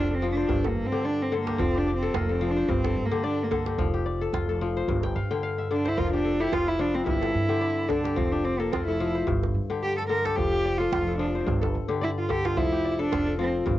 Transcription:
Already playing: F1 F3 D4 F4 G4 A4 D5
0.10 A4
0.15 C4
0.22 F3
0.32 D4
0.37 C5
0.49 G1 G2, djembe slap, djembe bass
0.64 A#3 A4, djembe slap, djembe tone
0.77 G2
0.87 C4
0.92 D3 G4
1.04 D4 D5, djembe slap
1.22 C4
1.32 D3 A4, djembe slap
1.41 A#3
1.47 G4, djembe slap
1.58 F1 F3 C4, djembe slap, djembe bass
1.75 D4 G4, djembe slap
1.87 D5, djembe slap
1.97 C4
2.03 A4
2.14 F1 A#3 F4, djembe slap, djembe tone
2.29 C4 A4
2.41 F3
2.51 D4
2.57 C5
2.68 G1 G2 C4, djembe slap, djembe bass
2.84 A4, djembe slap, djembe tone
2.96 G2
3.06 A#3
3.11 D3 G4
3.24 D4 D5, djembe slap
3.43 A#3
3.51 D3 A4, djembe slap, djembe tone
3.66 G4, djembe slap
3.78 F1 F3, djembe slap, djembe bass
3.94 G4, djembe slap
4.06 D5, djembe slap
4.21 A4
4.33 F1 F4, djembe slap, djembe tone
4.49 A4
4.61 F3
4.77 C5
4.88 G1 G2, djembe bass
5.03 G5, djembe slap, djembe tone
5.15 G2 F5, djembe slap
5.31 D3 G5, djembe slap
5.43 F5
5.58 E5, djembe slap
5.71 D3 D4 D5
5.85 E4 C5, djembe slap
5.97 F1 F3 F4 A#4, djembe bass
6.13 D4 G4
6.25 A4
6.40 E4 G4 A4
6.52 F1 F4, djembe slap, djembe tone
6.67 E4
6.79 F3 D4, djembe slap
6.94 C4
7.06 G1 G2 E4, djembe slap, djembe bass
7.21 A4, djembe slap, djembe tone
7.35 G2
7.49 D3 G4
7.61 D5, djembe slap
7.89 D3 D4 A4, djembe slap, djembe tone
8.04 G4, djembe slap
8.16 F1 F3 C4, djembe slap, djembe bass
8.32 D4 G4, djembe slap
8.44 C4 D5, djembe slap
8.60 A#3 A4
8.72 F1 C4 F4, djembe slap, djembe tone
8.87 E4 A4
9.00 F3
9.15 C5
9.27 G1 G2, djembe slap, djembe bass
9.43 djembe slap, djembe tone
9.54 G2
9.70 D3 G4
9.83 G4, djembe slap
9.97 A4
10.09 D3 A4 A#4, djembe slap
10.25 G4 A4, djembe slap
10.36 F1 F3 G4, djembe slap, djembe bass
10.52 G4, djembe slap
10.65 D5, djembe slap
10.78 F4 A4
10.92 F1 F4, djembe slap, djembe tone
11.07 A4
11.19 F3 D4
11.35 C5
11.46 G1 G2, djembe slap, djembe bass
11.62 A4, djembe slap, djembe tone
11.75 G2
11.88 D3 G4
12.01 E4 D5, djembe slap
12.19 F4
12.29 D3 G4 A4, djembe slap, djembe tone
12.45 F4 G4, djembe slap
12.57 F1 F3 E4, djembe slap, djembe bass
12.72 G4, djembe slap
12.85 D5, djembe slap
12.91 E4
12.99 D4 A4
13.12 F1 F4, djembe slap, djembe tone
13.27 A4
13.39 F3 C4
13.66 G1 G2, djembe slap, djembe bass

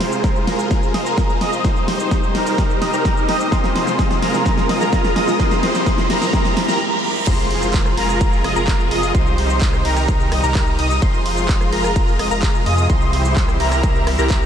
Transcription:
Already playing: C3 G#3 F4 G#4 C5 C6, riser
0.01 snare, open hi-hat
0.12 cabasa
0.24 kick, snare, cabasa
0.36 cabasa
0.47 F4 G#4 A#4 A#5, snare, open hi-hat
0.59 cabasa
0.71 kick, snare, cabasa
0.83 cabasa
0.94 F4 G#4 D#5 D#6, snare, open hi-hat
1.06 F4 G#4 A#4 A#5, cabasa
1.18 kick, snare, cabasa
1.30 cabasa
1.41 F4 G#4 D#5 D#6, snare, open hi-hat
1.53 cabasa
1.65 G3 D#4 G4 C5 C6, kick, snare, cabasa
1.76 cabasa
1.88 snare, open hi-hat
2.00 cabasa
2.11 kick, snare, cabasa
2.23 cabasa
2.35 D#4 G4 A#4 A#5, snare, open hi-hat
2.47 open hi-hat, cabasa
2.58 kick, snare, cabasa
2.70 cabasa
2.82 D#4 G4 D#5 D#6, snare, open hi-hat
2.93 D#4 G4 A#4 A#5, cabasa
3.05 kick, snare, cabasa
3.17 cabasa
3.29 D#4 G4 D#5 D#6, snare, open hi-hat
3.40 cabasa
3.52 C3 G#3 F4 G#4 C5 C6, kick, snare, cabasa
3.64 snare, cabasa
3.76 snare, open hi-hat
3.87 snare, cabasa
3.99 kick, snare, cabasa
4.11 snare, cabasa
4.22 F4 G#4 A#4 A#5, snare, open hi-hat
4.34 snare, cabasa
4.46 kick, snare, cabasa
4.58 snare, cabasa
4.69 F4 G#4 D#5 D#6, snare, open hi-hat
4.81 F4 G#4 A#4 A#5, snare, cabasa
4.93 kick, snare, cabasa
5.05 snare, cabasa
5.16 F4 G#4 D#5 D#6, snare, open hi-hat
5.28 snare, cabasa
5.40 G3 E4 G4 C5 C6, kick, snare, cabasa
5.51 snare, cabasa
5.63 snare, open hi-hat
5.75 snare, cabasa
5.86 kick, snare, cabasa
5.98 snare, cabasa
6.10 E4 G4 A#4 A#5, snare, open hi-hat
6.22 snare, open hi-hat, cabasa
6.33 kick, snare, reverse cymbal, cabasa
6.45 snare, cabasa
6.57 snare, open hi-hat
6.68 E4 G4 A#4 A#5, snare, cabasa
7.27 F1 C3 F3 G#3 F4 G#4 C5 C6, kick, crash, ride, impact, cabasa
7.39 cabasa
7.51 open hi-hat
7.62 cabasa
7.74 kick, clap, ride, cabasa
7.86 cross-stick, cabasa
7.97 F1 F4 G#4 A#4 A#5, open hi-hat
8.09 cross-stick, cabasa
8.21 kick, ride, cabasa
8.33 cabasa
8.44 F1 F4 G#4 D#5 D#6, cross-stick, open hi-hat
8.56 F1 F4 G#4 A#4 A#5, cabasa
8.68 kick, clap, ride, cabasa
8.80 cabasa
8.91 F1 F4 G#4 D#5 D#6, open hi-hat
9.03 cabasa
9.15 C2 D#3 G3 D#4 C5 C6, kick, ride, cabasa
9.27 cabasa
9.38 open hi-hat
9.50 cabasa
9.61 kick, clap, ride, cabasa
9.73 cross-stick, cabasa
9.85 C2 D#4 G4 A#4 A#5, open hi-hat
9.97 cross-stick, open hi-hat, cabasa
10.08 kick, ride, cabasa
10.20 cabasa
10.32 C2 D#4 G4 D#5 D#6, cross-stick, open hi-hat
10.44 C2 D#4 G4 A#4 A#5, cabasa
10.55 kick, clap, ride, cabasa
10.67 cabasa
10.79 C2 D#4 G4 D#5 D#6, open hi-hat
10.91 cabasa
11.02 F1 C3 F3 G#3 F4 G#4 C5 C6, kick, ride, cabasa
11.14 cabasa
11.26 open hi-hat
11.37 cabasa
11.49 kick, clap, ride, cabasa
11.61 cross-stick, cabasa
11.72 F1 F4 G#4 A#4 A#5, open hi-hat
11.84 cross-stick, cabasa
11.96 kick, ride, cabasa
12.08 cabasa
12.19 F1 F4 G#4 D#5 D#6, cross-stick, open hi-hat
12.31 F1 F4 G#4 A#4 A#5, cabasa
12.43 kick, clap, ride, cabasa
12.55 cabasa
12.66 F2 F4 G#4 D#5 D#6, open hi-hat
12.78 cabasa
12.90 C2 E3 G3 E4 G4 C5 C6, kick, ride, cabasa
13.02 cabasa
13.13 open hi-hat
13.25 cabasa
13.36 kick, clap, ride, cabasa
13.48 cross-stick, cabasa
13.60 C2 E4 G4 A#4 A#5, open hi-hat
13.72 cross-stick, open hi-hat, cabasa
13.83 kick, ride, cabasa
13.95 cabasa
14.07 cross-stick, open hi-hat
14.19 C2 E4 G4 A#4 A#5, cabasa
14.30 kick, clap, ride, cabasa
14.42 cabasa

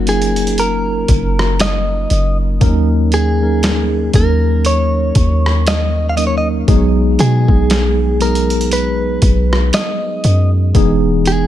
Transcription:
Already playing: F#1 F#3 A#3 C#4 D#4 A#4
0.06 F#3 A#3 C#4 D#4 F4 G#4, closed hi-hat
0.22 closed hi-hat
0.36 closed hi-hat
0.47 closed hi-hat
0.58 A#4, closed hi-hat
1.08 F#1, kick, closed hi-hat
1.39 cross-stick
1.59 D#5, snare, closed hi-hat
2.10 F#1, closed hi-hat
2.60 D#2 F#3 A#3 C#4 D#4 A#4, kick, closed hi-hat
3.12 G#4, closed hi-hat
3.41 F#3 A#3 C#4 D#4 A#4
3.63 snare, closed hi-hat
4.13 D#2 F#3 A#3 C#4 D#4 A#4, kick, closed hi-hat
4.65 C#5, closed hi-hat
5.15 D#2, kick, closed hi-hat
5.46 cross-stick
5.67 D#5, snare, closed hi-hat
6.09 F5
6.16 F#3 A#3 C#4 D#4 A#4 D#5, closed hi-hat
6.27 C#5
6.38 D#5
6.67 B1 F#3 G#3 B3 D#4 G#4, kick, closed hi-hat
7.19 B2 G#4, closed hi-hat
7.48 B1 F#3 G#3 B3 D#4 G#4, kick
7.70 snare, closed hi-hat
8.20 F#3 G#3 B3 D#4 G#4 A#4, closed hi-hat
8.35 closed hi-hat
8.50 closed hi-hat
8.61 closed hi-hat
8.71 B4, closed hi-hat
9.22 B1, kick, closed hi-hat
9.53 cross-stick
9.73 D#5, snare, closed hi-hat
10.24 F#2, closed hi-hat
10.74 E1 E3 G#3 B3 D#4 G#4, kick, closed hi-hat
11.25 G#4, closed hi-hat

